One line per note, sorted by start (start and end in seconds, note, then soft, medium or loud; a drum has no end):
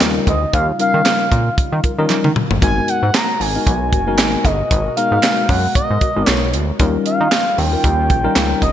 0.00 0.19 D#2 medium
0.00 2.58 C#3 medium
0.00 0.28 G3 loud
0.00 2.58 G3 medium
0.00 0.29 C#4 medium
0.00 0.29 D#4 loud
0.00 2.58 D#4 medium
0.00 0.29 F4 medium
0.00 2.58 F4 medium
0.00 0.29 A#4 loud
0.00 snare loud
0.00 clap medium
0.00 clap loud
0.00 closed hi-hat loud
0.27 0.45 D2 medium
0.27 0.52 D#5 medium
0.27 kick medium
0.27 closed hi-hat medium
0.53 0.72 D#2 loud
0.53 0.66 F5 loud
0.53 kick loud
0.53 closed hi-hat medium
0.79 1.26 G3 medium
0.79 1.26 C#4 medium
0.79 1.26 D#4 medium
0.79 1.26 F4 medium
0.79 1.27 A#4 medium
0.79 1.54 F5 loud
0.79 closed hi-hat medium
0.94 1.02 D#3 loud
1.06 snare loud
1.06 clap medium
1.06 clap loud
1.06 closed hi-hat loud
1.31 1.50 A#2 loud
1.31 kick loud
1.31 closed hi-hat medium
1.58 kick loud
1.58 closed hi-hat medium
1.72 1.80 D#3 medium
1.84 1.90 F4 loud
1.84 1.91 A#4 loud
1.84 kick medium
1.84 closed hi-hat medium
1.98 2.06 D#3 medium
1.98 2.27 G3 loud
1.98 2.27 C#4 medium
1.98 2.27 D#4 medium
1.98 2.27 F4 medium
1.98 2.27 A#4 loud
2.10 clap loud
2.10 high tom medium
2.24 2.32 D#3 medium
2.24 mid tom medium
2.36 mid tom medium
2.50 2.58 G1 medium
2.50 floor tom loud
2.62 2.80 G#1 loud
2.62 6.76 B2 medium
2.62 3.04 G#3 medium
2.62 6.76 G#3 medium
2.62 3.04 B3 medium
2.62 3.04 D#4 medium
2.62 3.04 F#4 medium
2.62 6.76 F#4 medium
2.62 3.04 A#4 medium
2.62 6.76 A#4 medium
2.62 2.90 G#5 loud
2.62 kick loud
2.62 closed hi-hat medium
2.88 3.16 F#5 loud
2.88 closed hi-hat medium
3.03 3.11 G#2 loud
3.14 3.42 A#5 loud
3.14 snare loud
3.14 clap medium
3.14 clap loud
3.14 closed hi-hat loud
3.40 3.58 G#1 medium
3.40 3.66 G#5 loud
3.40 open hi-hat medium
3.55 3.71 G#3 medium
3.55 3.71 B3 medium
3.55 3.71 D#4 medium
3.55 3.71 F#4 medium
3.55 3.72 A#4 medium
3.67 3.94 B1 loud
3.67 4.46 G#5 loud
3.67 kick loud
3.67 closed hi-hat medium
3.93 4.20 F#1 medium
3.93 3.99 F#4 medium
3.93 3.99 A#4 medium
3.93 kick loud
3.93 closed hi-hat medium
4.07 4.46 G#3 medium
4.07 4.46 B3 medium
4.07 4.46 D#4 medium
4.07 4.46 F#4 medium
4.07 4.46 A#4 loud
4.18 4.37 G#1 medium
4.18 snare loud
4.18 clap medium
4.18 clap loud
4.18 closed hi-hat loud
4.45 4.63 G1 medium
4.45 4.96 D#5 loud
4.45 kick loud
4.45 closed hi-hat medium
4.71 4.89 G#1 loud
4.71 kick loud
4.71 closed hi-hat medium
4.97 5.44 G#3 medium
4.97 5.44 B3 medium
4.97 5.44 D#4 medium
4.97 5.44 F#4 medium
4.97 5.44 A#4 loud
4.97 5.51 F5 loud
4.97 closed hi-hat medium
5.11 5.19 G#2 medium
5.23 snare loud
5.23 clap medium
5.23 clap loud
5.23 closed hi-hat loud
5.49 5.67 F#2 medium
5.49 5.75 F#5 medium
5.49 kick loud
5.49 open hi-hat medium
5.75 5.81 G#2 medium
5.75 6.29 D#5 medium
5.75 kick loud
5.75 closed hi-hat medium
5.90 5.98 G#2 medium
6.01 6.08 F#4 medium
6.01 6.08 A#4 medium
6.01 kick loud
6.01 closed hi-hat medium
6.16 6.24 G#1 medium
6.16 6.45 G#3 medium
6.16 6.45 B3 medium
6.16 6.45 D#4 medium
6.16 6.45 F#4 medium
6.16 6.45 A#4 medium
6.27 6.55 B1 medium
6.27 6.50 C#5 medium
6.27 snare loud
6.27 clap medium
6.27 clap loud
6.27 closed hi-hat loud
6.54 6.72 D2 loud
6.54 closed hi-hat medium
6.79 6.98 D#2 loud
6.79 8.72 D#3 medium
6.79 7.21 G3 loud
6.79 8.72 G3 medium
6.79 7.21 C#4 medium
6.79 8.72 C#4 medium
6.79 7.21 D#4 medium
6.79 8.72 F4 loud
6.79 7.21 F4 medium
6.79 7.22 A#4 loud
6.79 kick loud
6.79 closed hi-hat medium
7.06 7.59 F5 medium
7.06 closed hi-hat medium
7.21 7.28 D#3 loud
7.31 snare loud
7.31 clap loud
7.31 clap medium
7.31 closed hi-hat loud
7.58 7.76 D#2 medium
7.58 8.62 G5 loud
7.58 open hi-hat medium
7.72 7.88 G3 medium
7.72 7.89 C#4 medium
7.72 7.89 D#4 medium
7.72 7.89 F4 medium
7.72 7.89 A#4 medium
7.84 8.12 D#2 loud
7.84 kick loud
7.84 closed hi-hat medium
8.10 8.28 A#1 medium
8.10 8.16 F4 medium
8.10 8.17 A#4 medium
8.10 kick loud
8.10 closed hi-hat medium
8.24 8.63 G3 loud
8.24 8.63 C#4 loud
8.24 8.63 D#4 medium
8.24 8.63 F4 loud
8.24 8.63 A#4 loud
8.36 8.54 C#2 loud
8.36 snare loud
8.36 clap medium
8.36 closed hi-hat loud
8.62 8.72 F1 medium
8.62 8.72 D#5 medium
8.62 kick loud
8.62 closed hi-hat medium